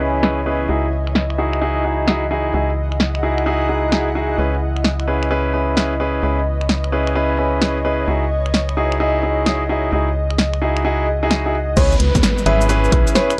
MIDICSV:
0, 0, Header, 1, 8, 480
1, 0, Start_track
1, 0, Tempo, 461538
1, 720, Time_signature, 4, 2, 24, 8
1, 13931, End_track
2, 0, Start_track
2, 0, Title_t, "Analog synth pad"
2, 0, Program_c, 0, 89
2, 0, Note_on_c, 0, 75, 76
2, 4546, Note_off_c, 0, 75, 0
2, 4559, Note_on_c, 0, 75, 80
2, 12240, Note_on_c, 0, 71, 85
2, 12252, Note_off_c, 0, 75, 0
2, 13931, Note_off_c, 0, 71, 0
2, 13931, End_track
3, 0, Start_track
3, 0, Title_t, "Ambient pad"
3, 0, Program_c, 1, 92
3, 0, Note_on_c, 1, 64, 91
3, 0, Note_on_c, 1, 71, 70
3, 0, Note_on_c, 1, 73, 88
3, 0, Note_on_c, 1, 80, 77
3, 1128, Note_on_c, 1, 75, 87
3, 1196, Note_on_c, 1, 68, 71
3, 1254, Note_on_c, 1, 78, 85
3, 1701, Note_off_c, 1, 73, 0
3, 2284, Note_off_c, 1, 80, 0
3, 2285, Note_off_c, 1, 71, 0
3, 5187, Note_on_c, 1, 71, 75
3, 5438, Note_on_c, 1, 73, 85
3, 5771, Note_off_c, 1, 75, 0
3, 5885, Note_off_c, 1, 68, 0
3, 6124, Note_off_c, 1, 78, 0
3, 6302, Note_on_c, 1, 80, 78
3, 8977, Note_on_c, 1, 68, 79
3, 9502, Note_off_c, 1, 80, 0
3, 9576, Note_off_c, 1, 73, 0
3, 9655, Note_on_c, 1, 75, 79
3, 9764, Note_off_c, 1, 71, 0
3, 10143, Note_on_c, 1, 78, 91
3, 12240, Note_off_c, 1, 64, 0
3, 12240, Note_off_c, 1, 68, 0
3, 12240, Note_off_c, 1, 75, 0
3, 12240, Note_off_c, 1, 78, 0
3, 13931, End_track
4, 0, Start_track
4, 0, Title_t, "FM electric piano"
4, 0, Program_c, 2, 5
4, 12239, Note_on_c, 2, 73, 91
4, 12428, Note_off_c, 2, 73, 0
4, 12960, Note_on_c, 2, 76, 91
4, 13148, Note_off_c, 2, 76, 0
4, 13679, Note_on_c, 2, 73, 90
4, 13867, Note_off_c, 2, 73, 0
4, 13931, End_track
5, 0, Start_track
5, 0, Title_t, "Grand piano"
5, 0, Program_c, 3, 0
5, 0, Note_on_c, 3, 61, 66
5, 0, Note_on_c, 3, 64, 61
5, 0, Note_on_c, 3, 68, 59
5, 0, Note_on_c, 3, 71, 74
5, 220, Note_off_c, 3, 61, 0
5, 220, Note_off_c, 3, 64, 0
5, 220, Note_off_c, 3, 68, 0
5, 220, Note_off_c, 3, 71, 0
5, 239, Note_on_c, 3, 61, 77
5, 240, Note_on_c, 3, 64, 71
5, 240, Note_on_c, 3, 68, 71
5, 240, Note_on_c, 3, 71, 85
5, 398, Note_off_c, 3, 61, 0
5, 398, Note_off_c, 3, 64, 0
5, 398, Note_off_c, 3, 68, 0
5, 398, Note_off_c, 3, 71, 0
5, 479, Note_on_c, 3, 61, 73
5, 479, Note_on_c, 3, 64, 68
5, 479, Note_on_c, 3, 68, 68
5, 479, Note_on_c, 3, 71, 80
5, 699, Note_off_c, 3, 61, 0
5, 699, Note_off_c, 3, 64, 0
5, 699, Note_off_c, 3, 68, 0
5, 699, Note_off_c, 3, 71, 0
5, 719, Note_on_c, 3, 63, 68
5, 719, Note_on_c, 3, 64, 62
5, 719, Note_on_c, 3, 66, 62
5, 720, Note_on_c, 3, 68, 74
5, 878, Note_off_c, 3, 63, 0
5, 878, Note_off_c, 3, 64, 0
5, 878, Note_off_c, 3, 66, 0
5, 878, Note_off_c, 3, 68, 0
5, 1439, Note_on_c, 3, 63, 73
5, 1439, Note_on_c, 3, 64, 69
5, 1439, Note_on_c, 3, 66, 70
5, 1440, Note_on_c, 3, 68, 80
5, 1649, Note_off_c, 3, 63, 0
5, 1649, Note_off_c, 3, 64, 0
5, 1649, Note_off_c, 3, 66, 0
5, 1649, Note_off_c, 3, 68, 0
5, 1679, Note_on_c, 3, 63, 83
5, 1679, Note_on_c, 3, 64, 77
5, 1679, Note_on_c, 3, 66, 75
5, 1679, Note_on_c, 3, 68, 92
5, 1899, Note_off_c, 3, 63, 0
5, 1899, Note_off_c, 3, 64, 0
5, 1899, Note_off_c, 3, 66, 0
5, 1899, Note_off_c, 3, 68, 0
5, 1920, Note_on_c, 3, 64, 61
5, 1920, Note_on_c, 3, 66, 61
5, 1921, Note_on_c, 3, 63, 68
5, 1921, Note_on_c, 3, 68, 71
5, 2140, Note_off_c, 3, 63, 0
5, 2140, Note_off_c, 3, 64, 0
5, 2140, Note_off_c, 3, 66, 0
5, 2140, Note_off_c, 3, 68, 0
5, 2159, Note_on_c, 3, 66, 70
5, 2159, Note_on_c, 3, 68, 85
5, 2160, Note_on_c, 3, 63, 75
5, 2160, Note_on_c, 3, 64, 72
5, 2318, Note_off_c, 3, 63, 0
5, 2318, Note_off_c, 3, 64, 0
5, 2318, Note_off_c, 3, 66, 0
5, 2318, Note_off_c, 3, 68, 0
5, 2399, Note_on_c, 3, 63, 77
5, 2399, Note_on_c, 3, 64, 68
5, 2399, Note_on_c, 3, 66, 68
5, 2399, Note_on_c, 3, 68, 83
5, 2619, Note_off_c, 3, 64, 0
5, 2620, Note_off_c, 3, 63, 0
5, 2620, Note_off_c, 3, 66, 0
5, 2620, Note_off_c, 3, 68, 0
5, 2640, Note_on_c, 3, 63, 67
5, 2640, Note_on_c, 3, 64, 62
5, 2640, Note_on_c, 3, 66, 62
5, 2640, Note_on_c, 3, 68, 72
5, 2798, Note_off_c, 3, 63, 0
5, 2798, Note_off_c, 3, 64, 0
5, 2798, Note_off_c, 3, 66, 0
5, 2798, Note_off_c, 3, 68, 0
5, 3359, Note_on_c, 3, 63, 72
5, 3359, Note_on_c, 3, 64, 68
5, 3359, Note_on_c, 3, 66, 66
5, 3359, Note_on_c, 3, 68, 80
5, 3569, Note_off_c, 3, 63, 0
5, 3569, Note_off_c, 3, 64, 0
5, 3569, Note_off_c, 3, 66, 0
5, 3569, Note_off_c, 3, 68, 0
5, 3599, Note_on_c, 3, 63, 85
5, 3599, Note_on_c, 3, 64, 76
5, 3599, Note_on_c, 3, 66, 76
5, 3599, Note_on_c, 3, 68, 90
5, 3819, Note_off_c, 3, 63, 0
5, 3819, Note_off_c, 3, 64, 0
5, 3819, Note_off_c, 3, 66, 0
5, 3819, Note_off_c, 3, 68, 0
5, 3839, Note_on_c, 3, 63, 65
5, 3839, Note_on_c, 3, 64, 60
5, 3839, Note_on_c, 3, 66, 60
5, 3840, Note_on_c, 3, 68, 73
5, 4059, Note_off_c, 3, 64, 0
5, 4060, Note_off_c, 3, 63, 0
5, 4060, Note_off_c, 3, 66, 0
5, 4060, Note_off_c, 3, 68, 0
5, 4078, Note_on_c, 3, 66, 70
5, 4079, Note_on_c, 3, 63, 79
5, 4079, Note_on_c, 3, 64, 71
5, 4079, Note_on_c, 3, 68, 85
5, 4238, Note_off_c, 3, 63, 0
5, 4238, Note_off_c, 3, 64, 0
5, 4238, Note_off_c, 3, 66, 0
5, 4238, Note_off_c, 3, 68, 0
5, 4319, Note_on_c, 3, 63, 74
5, 4319, Note_on_c, 3, 64, 68
5, 4319, Note_on_c, 3, 66, 70
5, 4319, Note_on_c, 3, 68, 84
5, 4539, Note_off_c, 3, 63, 0
5, 4539, Note_off_c, 3, 64, 0
5, 4539, Note_off_c, 3, 66, 0
5, 4539, Note_off_c, 3, 68, 0
5, 4559, Note_on_c, 3, 61, 67
5, 4559, Note_on_c, 3, 64, 63
5, 4559, Note_on_c, 3, 68, 61
5, 4559, Note_on_c, 3, 71, 75
5, 4718, Note_off_c, 3, 61, 0
5, 4718, Note_off_c, 3, 64, 0
5, 4718, Note_off_c, 3, 68, 0
5, 4718, Note_off_c, 3, 71, 0
5, 5278, Note_on_c, 3, 61, 73
5, 5278, Note_on_c, 3, 64, 69
5, 5278, Note_on_c, 3, 68, 69
5, 5278, Note_on_c, 3, 71, 82
5, 5489, Note_off_c, 3, 61, 0
5, 5489, Note_off_c, 3, 64, 0
5, 5489, Note_off_c, 3, 68, 0
5, 5489, Note_off_c, 3, 71, 0
5, 5518, Note_on_c, 3, 61, 83
5, 5518, Note_on_c, 3, 64, 76
5, 5518, Note_on_c, 3, 68, 76
5, 5518, Note_on_c, 3, 71, 93
5, 5739, Note_off_c, 3, 61, 0
5, 5739, Note_off_c, 3, 64, 0
5, 5739, Note_off_c, 3, 68, 0
5, 5739, Note_off_c, 3, 71, 0
5, 5758, Note_on_c, 3, 71, 75
5, 5759, Note_on_c, 3, 61, 67
5, 5759, Note_on_c, 3, 64, 62
5, 5759, Note_on_c, 3, 68, 61
5, 5979, Note_off_c, 3, 61, 0
5, 5979, Note_off_c, 3, 64, 0
5, 5979, Note_off_c, 3, 68, 0
5, 5979, Note_off_c, 3, 71, 0
5, 5999, Note_on_c, 3, 61, 80
5, 5999, Note_on_c, 3, 64, 72
5, 5999, Note_on_c, 3, 68, 70
5, 5999, Note_on_c, 3, 71, 86
5, 6158, Note_off_c, 3, 61, 0
5, 6158, Note_off_c, 3, 64, 0
5, 6158, Note_off_c, 3, 68, 0
5, 6158, Note_off_c, 3, 71, 0
5, 6239, Note_on_c, 3, 61, 74
5, 6239, Note_on_c, 3, 64, 69
5, 6239, Note_on_c, 3, 68, 71
5, 6239, Note_on_c, 3, 71, 83
5, 6459, Note_off_c, 3, 64, 0
5, 6459, Note_off_c, 3, 68, 0
5, 6459, Note_off_c, 3, 71, 0
5, 6460, Note_off_c, 3, 61, 0
5, 6480, Note_on_c, 3, 61, 68
5, 6480, Note_on_c, 3, 64, 64
5, 6480, Note_on_c, 3, 68, 62
5, 6480, Note_on_c, 3, 71, 74
5, 6638, Note_off_c, 3, 61, 0
5, 6638, Note_off_c, 3, 64, 0
5, 6638, Note_off_c, 3, 68, 0
5, 6638, Note_off_c, 3, 71, 0
5, 7200, Note_on_c, 3, 61, 76
5, 7200, Note_on_c, 3, 64, 68
5, 7200, Note_on_c, 3, 68, 68
5, 7200, Note_on_c, 3, 71, 82
5, 7409, Note_off_c, 3, 61, 0
5, 7409, Note_off_c, 3, 64, 0
5, 7409, Note_off_c, 3, 68, 0
5, 7409, Note_off_c, 3, 71, 0
5, 7440, Note_on_c, 3, 61, 87
5, 7440, Note_on_c, 3, 64, 78
5, 7440, Note_on_c, 3, 68, 77
5, 7440, Note_on_c, 3, 71, 92
5, 7660, Note_off_c, 3, 61, 0
5, 7660, Note_off_c, 3, 64, 0
5, 7660, Note_off_c, 3, 68, 0
5, 7660, Note_off_c, 3, 71, 0
5, 7680, Note_on_c, 3, 61, 67
5, 7680, Note_on_c, 3, 64, 61
5, 7680, Note_on_c, 3, 68, 63
5, 7680, Note_on_c, 3, 71, 74
5, 7900, Note_off_c, 3, 61, 0
5, 7900, Note_off_c, 3, 64, 0
5, 7900, Note_off_c, 3, 68, 0
5, 7900, Note_off_c, 3, 71, 0
5, 7920, Note_on_c, 3, 61, 79
5, 7920, Note_on_c, 3, 64, 73
5, 7920, Note_on_c, 3, 68, 73
5, 7920, Note_on_c, 3, 71, 86
5, 8078, Note_off_c, 3, 61, 0
5, 8078, Note_off_c, 3, 68, 0
5, 8078, Note_off_c, 3, 71, 0
5, 8079, Note_off_c, 3, 64, 0
5, 8160, Note_on_c, 3, 61, 76
5, 8160, Note_on_c, 3, 64, 69
5, 8160, Note_on_c, 3, 68, 70
5, 8160, Note_on_c, 3, 71, 86
5, 8380, Note_off_c, 3, 61, 0
5, 8380, Note_off_c, 3, 64, 0
5, 8380, Note_off_c, 3, 68, 0
5, 8380, Note_off_c, 3, 71, 0
5, 8400, Note_on_c, 3, 63, 69
5, 8400, Note_on_c, 3, 64, 65
5, 8400, Note_on_c, 3, 66, 63
5, 8400, Note_on_c, 3, 68, 75
5, 8558, Note_off_c, 3, 63, 0
5, 8558, Note_off_c, 3, 64, 0
5, 8558, Note_off_c, 3, 66, 0
5, 8558, Note_off_c, 3, 68, 0
5, 9120, Note_on_c, 3, 63, 76
5, 9120, Note_on_c, 3, 64, 70
5, 9120, Note_on_c, 3, 66, 71
5, 9120, Note_on_c, 3, 68, 85
5, 9329, Note_off_c, 3, 63, 0
5, 9329, Note_off_c, 3, 64, 0
5, 9329, Note_off_c, 3, 66, 0
5, 9330, Note_off_c, 3, 68, 0
5, 9360, Note_on_c, 3, 63, 87
5, 9360, Note_on_c, 3, 64, 80
5, 9360, Note_on_c, 3, 66, 78
5, 9361, Note_on_c, 3, 68, 95
5, 9580, Note_off_c, 3, 63, 0
5, 9580, Note_off_c, 3, 64, 0
5, 9580, Note_off_c, 3, 66, 0
5, 9580, Note_off_c, 3, 68, 0
5, 9600, Note_on_c, 3, 63, 68
5, 9600, Note_on_c, 3, 66, 62
5, 9601, Note_on_c, 3, 64, 63
5, 9601, Note_on_c, 3, 68, 75
5, 9820, Note_off_c, 3, 63, 0
5, 9820, Note_off_c, 3, 64, 0
5, 9820, Note_off_c, 3, 66, 0
5, 9820, Note_off_c, 3, 68, 0
5, 9840, Note_on_c, 3, 63, 79
5, 9841, Note_on_c, 3, 64, 73
5, 9841, Note_on_c, 3, 66, 71
5, 9841, Note_on_c, 3, 68, 87
5, 9999, Note_off_c, 3, 63, 0
5, 9999, Note_off_c, 3, 64, 0
5, 9999, Note_off_c, 3, 66, 0
5, 9999, Note_off_c, 3, 68, 0
5, 10081, Note_on_c, 3, 63, 75
5, 10081, Note_on_c, 3, 64, 71
5, 10081, Note_on_c, 3, 66, 68
5, 10081, Note_on_c, 3, 68, 86
5, 10300, Note_off_c, 3, 63, 0
5, 10300, Note_off_c, 3, 64, 0
5, 10300, Note_off_c, 3, 66, 0
5, 10300, Note_off_c, 3, 68, 0
5, 10320, Note_on_c, 3, 66, 62
5, 10320, Note_on_c, 3, 68, 76
5, 10321, Note_on_c, 3, 63, 69
5, 10321, Note_on_c, 3, 64, 63
5, 10479, Note_off_c, 3, 63, 0
5, 10479, Note_off_c, 3, 64, 0
5, 10479, Note_off_c, 3, 66, 0
5, 10479, Note_off_c, 3, 68, 0
5, 11040, Note_on_c, 3, 63, 76
5, 11040, Note_on_c, 3, 64, 71
5, 11040, Note_on_c, 3, 66, 69
5, 11040, Note_on_c, 3, 68, 83
5, 11249, Note_off_c, 3, 63, 0
5, 11249, Note_off_c, 3, 66, 0
5, 11249, Note_off_c, 3, 68, 0
5, 11250, Note_off_c, 3, 64, 0
5, 11279, Note_on_c, 3, 63, 85
5, 11279, Note_on_c, 3, 64, 80
5, 11279, Note_on_c, 3, 66, 79
5, 11279, Note_on_c, 3, 68, 93
5, 11499, Note_off_c, 3, 64, 0
5, 11499, Note_off_c, 3, 66, 0
5, 11499, Note_off_c, 3, 68, 0
5, 11500, Note_off_c, 3, 63, 0
5, 11676, Note_on_c, 3, 64, 78
5, 11676, Note_on_c, 3, 66, 78
5, 11677, Note_on_c, 3, 63, 88
5, 11677, Note_on_c, 3, 68, 97
5, 11744, Note_off_c, 3, 63, 0
5, 11744, Note_off_c, 3, 64, 0
5, 11744, Note_off_c, 3, 66, 0
5, 11744, Note_off_c, 3, 68, 0
5, 11759, Note_on_c, 3, 66, 71
5, 11759, Note_on_c, 3, 68, 84
5, 11760, Note_on_c, 3, 63, 77
5, 11760, Note_on_c, 3, 64, 73
5, 11893, Note_off_c, 3, 63, 0
5, 11893, Note_off_c, 3, 64, 0
5, 11893, Note_off_c, 3, 66, 0
5, 11893, Note_off_c, 3, 68, 0
5, 11917, Note_on_c, 3, 63, 72
5, 11917, Note_on_c, 3, 66, 67
5, 11917, Note_on_c, 3, 68, 81
5, 11918, Note_on_c, 3, 64, 66
5, 12003, Note_off_c, 3, 63, 0
5, 12003, Note_off_c, 3, 66, 0
5, 12003, Note_off_c, 3, 68, 0
5, 12004, Note_off_c, 3, 64, 0
5, 12240, Note_on_c, 3, 61, 76
5, 12240, Note_on_c, 3, 64, 70
5, 12240, Note_on_c, 3, 68, 69
5, 12240, Note_on_c, 3, 71, 86
5, 12398, Note_off_c, 3, 61, 0
5, 12398, Note_off_c, 3, 68, 0
5, 12398, Note_off_c, 3, 71, 0
5, 12399, Note_off_c, 3, 64, 0
5, 12960, Note_on_c, 3, 61, 83
5, 12960, Note_on_c, 3, 64, 76
5, 12960, Note_on_c, 3, 68, 77
5, 12960, Note_on_c, 3, 71, 94
5, 13169, Note_off_c, 3, 64, 0
5, 13169, Note_off_c, 3, 71, 0
5, 13170, Note_off_c, 3, 61, 0
5, 13170, Note_off_c, 3, 68, 0
5, 13200, Note_on_c, 3, 61, 93
5, 13200, Note_on_c, 3, 64, 86
5, 13200, Note_on_c, 3, 68, 86
5, 13200, Note_on_c, 3, 71, 104
5, 13420, Note_off_c, 3, 61, 0
5, 13420, Note_off_c, 3, 64, 0
5, 13420, Note_off_c, 3, 68, 0
5, 13420, Note_off_c, 3, 71, 0
5, 13439, Note_on_c, 3, 61, 73
5, 13439, Note_on_c, 3, 64, 70
5, 13439, Note_on_c, 3, 71, 82
5, 13440, Note_on_c, 3, 68, 69
5, 13659, Note_off_c, 3, 61, 0
5, 13659, Note_off_c, 3, 71, 0
5, 13660, Note_off_c, 3, 64, 0
5, 13660, Note_off_c, 3, 68, 0
5, 13679, Note_on_c, 3, 61, 86
5, 13679, Note_on_c, 3, 64, 84
5, 13679, Note_on_c, 3, 68, 81
5, 13679, Note_on_c, 3, 71, 97
5, 13838, Note_off_c, 3, 61, 0
5, 13838, Note_off_c, 3, 64, 0
5, 13838, Note_off_c, 3, 68, 0
5, 13838, Note_off_c, 3, 71, 0
5, 13931, End_track
6, 0, Start_track
6, 0, Title_t, "FM bass"
6, 0, Program_c, 4, 39
6, 0, Note_on_c, 4, 37, 83
6, 702, Note_off_c, 4, 37, 0
6, 719, Note_on_c, 4, 37, 84
6, 2622, Note_off_c, 4, 37, 0
6, 2639, Note_on_c, 4, 37, 86
6, 4543, Note_off_c, 4, 37, 0
6, 4558, Note_on_c, 4, 37, 87
6, 6462, Note_off_c, 4, 37, 0
6, 6479, Note_on_c, 4, 37, 87
6, 8383, Note_off_c, 4, 37, 0
6, 8401, Note_on_c, 4, 37, 84
6, 10304, Note_off_c, 4, 37, 0
6, 10321, Note_on_c, 4, 37, 90
6, 12223, Note_off_c, 4, 37, 0
6, 12240, Note_on_c, 4, 37, 101
6, 12440, Note_off_c, 4, 37, 0
6, 12480, Note_on_c, 4, 37, 88
6, 12600, Note_off_c, 4, 37, 0
6, 12636, Note_on_c, 4, 40, 82
6, 12700, Note_off_c, 4, 40, 0
6, 12959, Note_on_c, 4, 32, 94
6, 13408, Note_off_c, 4, 32, 0
6, 13439, Note_on_c, 4, 35, 96
6, 13559, Note_off_c, 4, 35, 0
6, 13931, End_track
7, 0, Start_track
7, 0, Title_t, "Downlifter"
7, 0, Program_c, 5, 103
7, 12240, Note_on_c, 5, 60, 74
7, 13931, Note_off_c, 5, 60, 0
7, 13931, End_track
8, 0, Start_track
8, 0, Title_t, "Drums"
8, 238, Note_on_c, 9, 38, 108
8, 342, Note_off_c, 9, 38, 0
8, 1115, Note_on_c, 9, 26, 29
8, 1198, Note_on_c, 9, 38, 109
8, 1219, Note_off_c, 9, 26, 0
8, 1302, Note_off_c, 9, 38, 0
8, 1355, Note_on_c, 9, 26, 29
8, 1459, Note_off_c, 9, 26, 0
8, 1595, Note_on_c, 9, 26, 28
8, 1699, Note_off_c, 9, 26, 0
8, 2158, Note_on_c, 9, 38, 111
8, 2262, Note_off_c, 9, 38, 0
8, 3036, Note_on_c, 9, 26, 28
8, 3119, Note_on_c, 9, 38, 105
8, 3140, Note_off_c, 9, 26, 0
8, 3223, Note_off_c, 9, 38, 0
8, 3276, Note_on_c, 9, 26, 28
8, 3380, Note_off_c, 9, 26, 0
8, 3516, Note_on_c, 9, 26, 27
8, 3620, Note_off_c, 9, 26, 0
8, 4078, Note_on_c, 9, 38, 112
8, 4182, Note_off_c, 9, 38, 0
8, 4956, Note_on_c, 9, 26, 27
8, 5038, Note_on_c, 9, 38, 103
8, 5060, Note_off_c, 9, 26, 0
8, 5142, Note_off_c, 9, 38, 0
8, 5196, Note_on_c, 9, 26, 27
8, 5300, Note_off_c, 9, 26, 0
8, 5436, Note_on_c, 9, 26, 26
8, 5540, Note_off_c, 9, 26, 0
8, 5999, Note_on_c, 9, 38, 106
8, 6103, Note_off_c, 9, 38, 0
8, 6877, Note_on_c, 9, 26, 27
8, 6959, Note_on_c, 9, 38, 105
8, 6981, Note_off_c, 9, 26, 0
8, 7063, Note_off_c, 9, 38, 0
8, 7116, Note_on_c, 9, 26, 27
8, 7220, Note_off_c, 9, 26, 0
8, 7356, Note_on_c, 9, 26, 26
8, 7460, Note_off_c, 9, 26, 0
8, 7920, Note_on_c, 9, 38, 105
8, 8024, Note_off_c, 9, 38, 0
8, 8797, Note_on_c, 9, 26, 29
8, 8880, Note_on_c, 9, 38, 102
8, 8901, Note_off_c, 9, 26, 0
8, 8984, Note_off_c, 9, 38, 0
8, 9038, Note_on_c, 9, 26, 28
8, 9142, Note_off_c, 9, 26, 0
8, 9278, Note_on_c, 9, 26, 27
8, 9382, Note_off_c, 9, 26, 0
8, 9841, Note_on_c, 9, 38, 104
8, 9945, Note_off_c, 9, 38, 0
8, 10717, Note_on_c, 9, 26, 29
8, 10800, Note_on_c, 9, 38, 104
8, 10821, Note_off_c, 9, 26, 0
8, 10904, Note_off_c, 9, 38, 0
8, 10957, Note_on_c, 9, 26, 29
8, 11061, Note_off_c, 9, 26, 0
8, 11197, Note_on_c, 9, 26, 29
8, 11301, Note_off_c, 9, 26, 0
8, 11759, Note_on_c, 9, 38, 108
8, 11863, Note_off_c, 9, 38, 0
8, 12239, Note_on_c, 9, 42, 65
8, 12239, Note_on_c, 9, 49, 103
8, 12239, Note_on_c, 9, 69, 50
8, 12240, Note_on_c, 9, 36, 119
8, 12343, Note_off_c, 9, 42, 0
8, 12343, Note_off_c, 9, 49, 0
8, 12343, Note_off_c, 9, 69, 0
8, 12344, Note_off_c, 9, 36, 0
8, 12397, Note_on_c, 9, 69, 31
8, 12479, Note_on_c, 9, 42, 110
8, 12501, Note_off_c, 9, 69, 0
8, 12583, Note_off_c, 9, 42, 0
8, 12636, Note_on_c, 9, 42, 68
8, 12636, Note_on_c, 9, 69, 61
8, 12637, Note_on_c, 9, 36, 102
8, 12720, Note_off_c, 9, 42, 0
8, 12720, Note_off_c, 9, 69, 0
8, 12720, Note_on_c, 9, 38, 117
8, 12720, Note_on_c, 9, 42, 67
8, 12720, Note_on_c, 9, 69, 51
8, 12741, Note_off_c, 9, 36, 0
8, 12824, Note_off_c, 9, 38, 0
8, 12824, Note_off_c, 9, 42, 0
8, 12824, Note_off_c, 9, 69, 0
8, 12876, Note_on_c, 9, 69, 31
8, 12959, Note_on_c, 9, 42, 111
8, 12980, Note_off_c, 9, 69, 0
8, 13063, Note_off_c, 9, 42, 0
8, 13116, Note_on_c, 9, 69, 59
8, 13200, Note_off_c, 9, 69, 0
8, 13200, Note_on_c, 9, 42, 69
8, 13200, Note_on_c, 9, 69, 52
8, 13304, Note_off_c, 9, 42, 0
8, 13304, Note_off_c, 9, 69, 0
8, 13356, Note_on_c, 9, 69, 29
8, 13439, Note_on_c, 9, 36, 104
8, 13440, Note_on_c, 9, 42, 108
8, 13460, Note_off_c, 9, 69, 0
8, 13543, Note_off_c, 9, 36, 0
8, 13544, Note_off_c, 9, 42, 0
8, 13596, Note_on_c, 9, 42, 65
8, 13596, Note_on_c, 9, 69, 59
8, 13680, Note_off_c, 9, 69, 0
8, 13680, Note_on_c, 9, 38, 123
8, 13680, Note_on_c, 9, 69, 51
8, 13700, Note_off_c, 9, 42, 0
8, 13784, Note_off_c, 9, 38, 0
8, 13784, Note_off_c, 9, 69, 0
8, 13836, Note_on_c, 9, 26, 56
8, 13836, Note_on_c, 9, 42, 37
8, 13836, Note_on_c, 9, 69, 31
8, 13931, Note_off_c, 9, 26, 0
8, 13931, Note_off_c, 9, 42, 0
8, 13931, Note_off_c, 9, 69, 0
8, 13931, End_track
0, 0, End_of_file